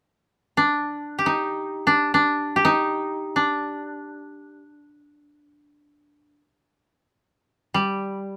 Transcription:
0, 0, Header, 1, 2, 480
1, 0, Start_track
1, 0, Tempo, 500000
1, 8032, End_track
2, 0, Start_track
2, 0, Title_t, "Koto"
2, 0, Program_c, 0, 107
2, 550, Note_on_c, 0, 62, 51
2, 1138, Note_on_c, 0, 67, 41
2, 1211, Note_on_c, 0, 63, 49
2, 1268, Note_off_c, 0, 62, 0
2, 1793, Note_on_c, 0, 62, 55
2, 1851, Note_off_c, 0, 63, 0
2, 2051, Note_off_c, 0, 62, 0
2, 2055, Note_on_c, 0, 62, 51
2, 2454, Note_off_c, 0, 67, 0
2, 2458, Note_on_c, 0, 67, 45
2, 2541, Note_on_c, 0, 63, 61
2, 2599, Note_off_c, 0, 62, 0
2, 3225, Note_on_c, 0, 62, 45
2, 3283, Note_off_c, 0, 63, 0
2, 4416, Note_off_c, 0, 67, 0
2, 6137, Note_off_c, 0, 62, 0
2, 7434, Note_on_c, 0, 55, 51
2, 8032, Note_off_c, 0, 55, 0
2, 8032, End_track
0, 0, End_of_file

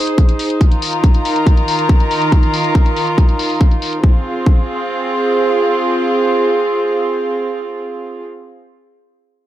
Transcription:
0, 0, Header, 1, 3, 480
1, 0, Start_track
1, 0, Key_signature, -4, "minor"
1, 0, Tempo, 428571
1, 681, Time_signature, 4, 2, 24, 8
1, 10605, End_track
2, 0, Start_track
2, 0, Title_t, "String section"
2, 0, Program_c, 0, 48
2, 0, Note_on_c, 0, 63, 67
2, 0, Note_on_c, 0, 68, 70
2, 0, Note_on_c, 0, 72, 81
2, 643, Note_off_c, 0, 68, 0
2, 643, Note_off_c, 0, 72, 0
2, 681, Note_on_c, 0, 65, 66
2, 681, Note_on_c, 0, 70, 66
2, 681, Note_on_c, 0, 82, 80
2, 682, Note_on_c, 0, 51, 71
2, 4476, Note_off_c, 0, 63, 0
2, 4482, Note_off_c, 0, 65, 0
2, 4482, Note_off_c, 0, 70, 0
2, 4483, Note_off_c, 0, 51, 0
2, 4483, Note_off_c, 0, 82, 0
2, 4519, Note_on_c, 0, 60, 72
2, 4519, Note_on_c, 0, 68, 74
2, 4520, Note_on_c, 0, 65, 63
2, 9211, Note_off_c, 0, 60, 0
2, 9211, Note_off_c, 0, 65, 0
2, 9211, Note_off_c, 0, 68, 0
2, 10605, End_track
3, 0, Start_track
3, 0, Title_t, "Drums"
3, 81, Note_on_c, 9, 42, 36
3, 193, Note_off_c, 9, 42, 0
3, 201, Note_on_c, 9, 36, 104
3, 201, Note_on_c, 9, 42, 58
3, 313, Note_off_c, 9, 36, 0
3, 313, Note_off_c, 9, 42, 0
3, 321, Note_on_c, 9, 42, 35
3, 433, Note_off_c, 9, 42, 0
3, 440, Note_on_c, 9, 46, 91
3, 552, Note_off_c, 9, 46, 0
3, 561, Note_on_c, 9, 42, 36
3, 673, Note_off_c, 9, 42, 0
3, 681, Note_on_c, 9, 36, 108
3, 681, Note_on_c, 9, 42, 60
3, 793, Note_off_c, 9, 36, 0
3, 793, Note_off_c, 9, 42, 0
3, 801, Note_on_c, 9, 42, 37
3, 913, Note_off_c, 9, 42, 0
3, 920, Note_on_c, 9, 46, 89
3, 1032, Note_off_c, 9, 46, 0
3, 1041, Note_on_c, 9, 42, 35
3, 1153, Note_off_c, 9, 42, 0
3, 1161, Note_on_c, 9, 36, 103
3, 1161, Note_on_c, 9, 42, 62
3, 1273, Note_off_c, 9, 36, 0
3, 1273, Note_off_c, 9, 42, 0
3, 1282, Note_on_c, 9, 42, 39
3, 1394, Note_off_c, 9, 42, 0
3, 1402, Note_on_c, 9, 46, 93
3, 1514, Note_off_c, 9, 46, 0
3, 1522, Note_on_c, 9, 42, 37
3, 1634, Note_off_c, 9, 42, 0
3, 1641, Note_on_c, 9, 36, 101
3, 1642, Note_on_c, 9, 42, 62
3, 1753, Note_off_c, 9, 36, 0
3, 1754, Note_off_c, 9, 42, 0
3, 1762, Note_on_c, 9, 42, 37
3, 1874, Note_off_c, 9, 42, 0
3, 1882, Note_on_c, 9, 46, 90
3, 1994, Note_off_c, 9, 46, 0
3, 2002, Note_on_c, 9, 42, 37
3, 2114, Note_off_c, 9, 42, 0
3, 2121, Note_on_c, 9, 36, 104
3, 2122, Note_on_c, 9, 42, 58
3, 2233, Note_off_c, 9, 36, 0
3, 2234, Note_off_c, 9, 42, 0
3, 2242, Note_on_c, 9, 42, 36
3, 2354, Note_off_c, 9, 42, 0
3, 2362, Note_on_c, 9, 46, 91
3, 2474, Note_off_c, 9, 46, 0
3, 2481, Note_on_c, 9, 42, 37
3, 2593, Note_off_c, 9, 42, 0
3, 2601, Note_on_c, 9, 36, 104
3, 2601, Note_on_c, 9, 42, 62
3, 2713, Note_off_c, 9, 36, 0
3, 2713, Note_off_c, 9, 42, 0
3, 2721, Note_on_c, 9, 42, 37
3, 2833, Note_off_c, 9, 42, 0
3, 2841, Note_on_c, 9, 46, 94
3, 2953, Note_off_c, 9, 46, 0
3, 2960, Note_on_c, 9, 42, 36
3, 3072, Note_off_c, 9, 42, 0
3, 3081, Note_on_c, 9, 36, 104
3, 3081, Note_on_c, 9, 42, 61
3, 3193, Note_off_c, 9, 36, 0
3, 3193, Note_off_c, 9, 42, 0
3, 3201, Note_on_c, 9, 42, 37
3, 3313, Note_off_c, 9, 42, 0
3, 3321, Note_on_c, 9, 46, 91
3, 3433, Note_off_c, 9, 46, 0
3, 3441, Note_on_c, 9, 42, 37
3, 3553, Note_off_c, 9, 42, 0
3, 3560, Note_on_c, 9, 42, 62
3, 3561, Note_on_c, 9, 36, 100
3, 3672, Note_off_c, 9, 42, 0
3, 3673, Note_off_c, 9, 36, 0
3, 3681, Note_on_c, 9, 42, 37
3, 3793, Note_off_c, 9, 42, 0
3, 3800, Note_on_c, 9, 46, 91
3, 3912, Note_off_c, 9, 46, 0
3, 3920, Note_on_c, 9, 46, 53
3, 4032, Note_off_c, 9, 46, 0
3, 4040, Note_on_c, 9, 36, 100
3, 4040, Note_on_c, 9, 42, 62
3, 4152, Note_off_c, 9, 36, 0
3, 4152, Note_off_c, 9, 42, 0
3, 4159, Note_on_c, 9, 42, 37
3, 4271, Note_off_c, 9, 42, 0
3, 4279, Note_on_c, 9, 46, 91
3, 4391, Note_off_c, 9, 46, 0
3, 4399, Note_on_c, 9, 42, 37
3, 4511, Note_off_c, 9, 42, 0
3, 4520, Note_on_c, 9, 36, 105
3, 4632, Note_off_c, 9, 36, 0
3, 5000, Note_on_c, 9, 36, 98
3, 5112, Note_off_c, 9, 36, 0
3, 10605, End_track
0, 0, End_of_file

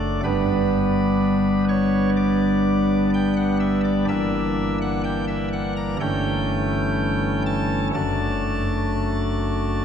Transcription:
0, 0, Header, 1, 2, 480
1, 0, Start_track
1, 0, Tempo, 964630
1, 116, Time_signature, 4, 2, 24, 8
1, 4901, End_track
2, 0, Start_track
2, 0, Title_t, "Pipe organ"
2, 0, Program_c, 0, 19
2, 0, Note_on_c, 0, 30, 75
2, 0, Note_on_c, 0, 42, 76
2, 0, Note_on_c, 0, 57, 64
2, 0, Note_on_c, 0, 62, 69
2, 0, Note_on_c, 0, 74, 119
2, 101, Note_off_c, 0, 30, 0
2, 101, Note_off_c, 0, 42, 0
2, 101, Note_off_c, 0, 57, 0
2, 102, Note_off_c, 0, 62, 0
2, 102, Note_off_c, 0, 74, 0
2, 119, Note_on_c, 0, 43, 78
2, 120, Note_on_c, 0, 71, 124
2, 122, Note_on_c, 0, 31, 81
2, 122, Note_on_c, 0, 55, 75
2, 122, Note_on_c, 0, 59, 65
2, 123, Note_on_c, 0, 62, 72
2, 817, Note_off_c, 0, 71, 0
2, 840, Note_on_c, 0, 73, 120
2, 1041, Note_off_c, 0, 73, 0
2, 1078, Note_on_c, 0, 74, 124
2, 1541, Note_off_c, 0, 74, 0
2, 1561, Note_on_c, 0, 79, 116
2, 1660, Note_off_c, 0, 79, 0
2, 1674, Note_on_c, 0, 78, 103
2, 1775, Note_off_c, 0, 78, 0
2, 1790, Note_on_c, 0, 76, 119
2, 1892, Note_off_c, 0, 76, 0
2, 1913, Note_on_c, 0, 74, 116
2, 2013, Note_off_c, 0, 43, 0
2, 2014, Note_off_c, 0, 31, 0
2, 2014, Note_off_c, 0, 55, 0
2, 2014, Note_off_c, 0, 59, 0
2, 2014, Note_off_c, 0, 74, 0
2, 2015, Note_off_c, 0, 62, 0
2, 2032, Note_on_c, 0, 76, 127
2, 2033, Note_on_c, 0, 31, 89
2, 2035, Note_on_c, 0, 43, 78
2, 2035, Note_on_c, 0, 62, 69
2, 2036, Note_on_c, 0, 52, 75
2, 2037, Note_on_c, 0, 58, 71
2, 2377, Note_off_c, 0, 76, 0
2, 2395, Note_on_c, 0, 78, 118
2, 2493, Note_off_c, 0, 78, 0
2, 2507, Note_on_c, 0, 79, 127
2, 2608, Note_off_c, 0, 79, 0
2, 2625, Note_on_c, 0, 76, 107
2, 2726, Note_off_c, 0, 76, 0
2, 2750, Note_on_c, 0, 78, 119
2, 2849, Note_off_c, 0, 78, 0
2, 2868, Note_on_c, 0, 82, 109
2, 2965, Note_off_c, 0, 31, 0
2, 2966, Note_off_c, 0, 43, 0
2, 2966, Note_off_c, 0, 52, 0
2, 2966, Note_off_c, 0, 62, 0
2, 2967, Note_off_c, 0, 58, 0
2, 2968, Note_off_c, 0, 82, 0
2, 2988, Note_on_c, 0, 57, 66
2, 2988, Note_on_c, 0, 79, 127
2, 2989, Note_on_c, 0, 52, 63
2, 2989, Note_on_c, 0, 61, 71
2, 2990, Note_on_c, 0, 31, 79
2, 2992, Note_on_c, 0, 43, 82
2, 3692, Note_off_c, 0, 79, 0
2, 3711, Note_on_c, 0, 81, 127
2, 3916, Note_off_c, 0, 81, 0
2, 3934, Note_off_c, 0, 52, 0
2, 3934, Note_off_c, 0, 57, 0
2, 3935, Note_off_c, 0, 31, 0
2, 3935, Note_off_c, 0, 61, 0
2, 3936, Note_off_c, 0, 43, 0
2, 3951, Note_on_c, 0, 81, 127
2, 3952, Note_on_c, 0, 54, 69
2, 3952, Note_on_c, 0, 57, 72
2, 3954, Note_on_c, 0, 30, 87
2, 3954, Note_on_c, 0, 42, 82
2, 3955, Note_on_c, 0, 62, 65
2, 4893, Note_off_c, 0, 54, 0
2, 4893, Note_off_c, 0, 81, 0
2, 4894, Note_off_c, 0, 30, 0
2, 4894, Note_off_c, 0, 42, 0
2, 4894, Note_off_c, 0, 57, 0
2, 4895, Note_off_c, 0, 62, 0
2, 4901, End_track
0, 0, End_of_file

